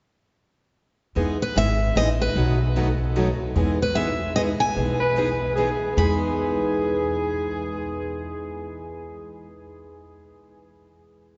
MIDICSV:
0, 0, Header, 1, 6, 480
1, 0, Start_track
1, 0, Key_signature, 4, "major"
1, 0, Tempo, 401606
1, 1382, Time_signature, 3, 2, 24, 8
1, 13591, End_track
2, 0, Start_track
2, 0, Title_t, "Steel-string acoustic guitar"
2, 0, Program_c, 0, 25
2, 1700, Note_on_c, 0, 71, 76
2, 1878, Note_off_c, 0, 71, 0
2, 1883, Note_on_c, 0, 76, 91
2, 2349, Note_off_c, 0, 76, 0
2, 2353, Note_on_c, 0, 75, 84
2, 2496, Note_off_c, 0, 75, 0
2, 2647, Note_on_c, 0, 71, 74
2, 3552, Note_off_c, 0, 71, 0
2, 4569, Note_on_c, 0, 71, 67
2, 4725, Note_on_c, 0, 76, 82
2, 4734, Note_off_c, 0, 71, 0
2, 5202, Note_off_c, 0, 76, 0
2, 5207, Note_on_c, 0, 75, 85
2, 5267, Note_off_c, 0, 75, 0
2, 5499, Note_on_c, 0, 80, 89
2, 6420, Note_off_c, 0, 80, 0
2, 7145, Note_on_c, 0, 83, 72
2, 10946, Note_off_c, 0, 83, 0
2, 13591, End_track
3, 0, Start_track
3, 0, Title_t, "Soprano saxophone"
3, 0, Program_c, 1, 64
3, 5972, Note_on_c, 1, 71, 96
3, 6601, Note_off_c, 1, 71, 0
3, 6640, Note_on_c, 1, 68, 80
3, 7096, Note_off_c, 1, 68, 0
3, 7114, Note_on_c, 1, 68, 72
3, 10914, Note_off_c, 1, 68, 0
3, 13591, End_track
4, 0, Start_track
4, 0, Title_t, "Steel-string acoustic guitar"
4, 0, Program_c, 2, 25
4, 2833, Note_on_c, 2, 57, 57
4, 2839, Note_on_c, 2, 66, 63
4, 3077, Note_off_c, 2, 57, 0
4, 3080, Note_off_c, 2, 66, 0
4, 3308, Note_on_c, 2, 57, 80
4, 3310, Note_on_c, 2, 66, 91
4, 3436, Note_off_c, 2, 57, 0
4, 3437, Note_off_c, 2, 66, 0
4, 3787, Note_on_c, 2, 57, 77
4, 3790, Note_on_c, 2, 66, 90
4, 3915, Note_off_c, 2, 57, 0
4, 3917, Note_off_c, 2, 66, 0
4, 13591, End_track
5, 0, Start_track
5, 0, Title_t, "Steel-string acoustic guitar"
5, 0, Program_c, 3, 25
5, 1377, Note_on_c, 3, 52, 57
5, 1384, Note_on_c, 3, 56, 64
5, 1387, Note_on_c, 3, 59, 65
5, 1391, Note_on_c, 3, 63, 60
5, 1395, Note_on_c, 3, 68, 65
5, 1630, Note_off_c, 3, 52, 0
5, 1633, Note_off_c, 3, 56, 0
5, 1635, Note_off_c, 3, 59, 0
5, 1637, Note_off_c, 3, 63, 0
5, 1639, Note_off_c, 3, 68, 0
5, 1860, Note_on_c, 3, 52, 70
5, 1863, Note_on_c, 3, 56, 80
5, 1869, Note_on_c, 3, 59, 72
5, 1870, Note_on_c, 3, 63, 82
5, 1871, Note_on_c, 3, 68, 82
5, 1993, Note_off_c, 3, 52, 0
5, 1995, Note_off_c, 3, 56, 0
5, 1997, Note_off_c, 3, 59, 0
5, 1998, Note_off_c, 3, 63, 0
5, 1999, Note_off_c, 3, 68, 0
5, 2334, Note_on_c, 3, 52, 70
5, 2341, Note_on_c, 3, 59, 81
5, 2342, Note_on_c, 3, 56, 74
5, 2348, Note_on_c, 3, 63, 78
5, 2352, Note_on_c, 3, 68, 84
5, 2470, Note_off_c, 3, 52, 0
5, 2473, Note_off_c, 3, 56, 0
5, 2473, Note_off_c, 3, 59, 0
5, 2476, Note_off_c, 3, 63, 0
5, 2478, Note_off_c, 3, 68, 0
5, 2817, Note_on_c, 3, 47, 59
5, 2822, Note_on_c, 3, 51, 61
5, 2824, Note_on_c, 3, 54, 57
5, 2825, Note_on_c, 3, 59, 61
5, 2825, Note_on_c, 3, 63, 63
5, 2827, Note_on_c, 3, 69, 68
5, 3069, Note_off_c, 3, 47, 0
5, 3071, Note_off_c, 3, 51, 0
5, 3072, Note_off_c, 3, 54, 0
5, 3073, Note_off_c, 3, 59, 0
5, 3073, Note_off_c, 3, 63, 0
5, 3074, Note_off_c, 3, 69, 0
5, 3294, Note_on_c, 3, 47, 68
5, 3298, Note_on_c, 3, 51, 80
5, 3302, Note_on_c, 3, 54, 83
5, 3304, Note_on_c, 3, 63, 78
5, 3306, Note_on_c, 3, 59, 78
5, 3307, Note_on_c, 3, 69, 82
5, 3429, Note_off_c, 3, 47, 0
5, 3431, Note_off_c, 3, 51, 0
5, 3433, Note_off_c, 3, 54, 0
5, 3434, Note_off_c, 3, 63, 0
5, 3435, Note_off_c, 3, 59, 0
5, 3436, Note_off_c, 3, 69, 0
5, 3772, Note_on_c, 3, 51, 82
5, 3773, Note_on_c, 3, 47, 78
5, 3776, Note_on_c, 3, 63, 84
5, 3777, Note_on_c, 3, 54, 84
5, 3779, Note_on_c, 3, 69, 88
5, 3781, Note_on_c, 3, 59, 84
5, 3908, Note_off_c, 3, 47, 0
5, 3908, Note_off_c, 3, 51, 0
5, 3910, Note_off_c, 3, 54, 0
5, 3910, Note_off_c, 3, 63, 0
5, 3912, Note_off_c, 3, 59, 0
5, 3912, Note_off_c, 3, 69, 0
5, 4250, Note_on_c, 3, 52, 61
5, 4250, Note_on_c, 3, 56, 62
5, 4254, Note_on_c, 3, 59, 63
5, 4254, Note_on_c, 3, 63, 69
5, 4261, Note_on_c, 3, 68, 70
5, 4505, Note_off_c, 3, 52, 0
5, 4505, Note_off_c, 3, 56, 0
5, 4507, Note_off_c, 3, 59, 0
5, 4507, Note_off_c, 3, 63, 0
5, 4510, Note_off_c, 3, 68, 0
5, 4727, Note_on_c, 3, 52, 81
5, 4730, Note_on_c, 3, 56, 82
5, 4733, Note_on_c, 3, 63, 76
5, 4734, Note_on_c, 3, 59, 76
5, 4737, Note_on_c, 3, 68, 88
5, 4865, Note_off_c, 3, 52, 0
5, 4867, Note_off_c, 3, 56, 0
5, 4868, Note_off_c, 3, 63, 0
5, 4869, Note_off_c, 3, 59, 0
5, 4871, Note_off_c, 3, 68, 0
5, 5220, Note_on_c, 3, 52, 80
5, 5225, Note_on_c, 3, 56, 83
5, 5228, Note_on_c, 3, 59, 85
5, 5231, Note_on_c, 3, 63, 78
5, 5237, Note_on_c, 3, 68, 81
5, 5352, Note_off_c, 3, 52, 0
5, 5354, Note_off_c, 3, 56, 0
5, 5356, Note_off_c, 3, 59, 0
5, 5358, Note_off_c, 3, 63, 0
5, 5360, Note_off_c, 3, 68, 0
5, 5692, Note_on_c, 3, 52, 58
5, 5693, Note_on_c, 3, 56, 58
5, 5698, Note_on_c, 3, 63, 58
5, 5703, Note_on_c, 3, 59, 69
5, 5707, Note_on_c, 3, 68, 67
5, 5946, Note_off_c, 3, 52, 0
5, 5947, Note_off_c, 3, 56, 0
5, 5949, Note_off_c, 3, 63, 0
5, 5952, Note_off_c, 3, 59, 0
5, 5954, Note_off_c, 3, 68, 0
5, 6166, Note_on_c, 3, 52, 77
5, 6169, Note_on_c, 3, 56, 78
5, 6172, Note_on_c, 3, 59, 80
5, 6179, Note_on_c, 3, 63, 83
5, 6180, Note_on_c, 3, 68, 82
5, 6306, Note_off_c, 3, 52, 0
5, 6307, Note_off_c, 3, 56, 0
5, 6309, Note_off_c, 3, 59, 0
5, 6312, Note_off_c, 3, 63, 0
5, 6313, Note_off_c, 3, 68, 0
5, 6657, Note_on_c, 3, 52, 81
5, 6664, Note_on_c, 3, 59, 79
5, 6665, Note_on_c, 3, 56, 80
5, 6668, Note_on_c, 3, 63, 82
5, 6669, Note_on_c, 3, 68, 83
5, 6791, Note_off_c, 3, 52, 0
5, 6795, Note_off_c, 3, 59, 0
5, 6796, Note_off_c, 3, 56, 0
5, 6797, Note_off_c, 3, 63, 0
5, 6797, Note_off_c, 3, 68, 0
5, 7132, Note_on_c, 3, 52, 74
5, 7143, Note_on_c, 3, 56, 78
5, 7149, Note_on_c, 3, 59, 75
5, 7160, Note_on_c, 3, 63, 82
5, 7166, Note_on_c, 3, 68, 85
5, 11315, Note_off_c, 3, 52, 0
5, 11327, Note_off_c, 3, 56, 0
5, 11333, Note_off_c, 3, 59, 0
5, 11343, Note_off_c, 3, 63, 0
5, 11349, Note_off_c, 3, 68, 0
5, 13591, End_track
6, 0, Start_track
6, 0, Title_t, "Upright bass"
6, 0, Program_c, 4, 32
6, 1388, Note_on_c, 4, 40, 76
6, 1768, Note_off_c, 4, 40, 0
6, 1864, Note_on_c, 4, 32, 72
6, 2270, Note_off_c, 4, 32, 0
6, 2338, Note_on_c, 4, 33, 72
6, 2746, Note_off_c, 4, 33, 0
6, 2814, Note_on_c, 4, 35, 80
6, 3967, Note_off_c, 4, 35, 0
6, 4250, Note_on_c, 4, 40, 84
6, 5406, Note_off_c, 4, 40, 0
6, 5695, Note_on_c, 4, 35, 75
6, 6850, Note_off_c, 4, 35, 0
6, 7135, Note_on_c, 4, 40, 82
6, 10936, Note_off_c, 4, 40, 0
6, 13591, End_track
0, 0, End_of_file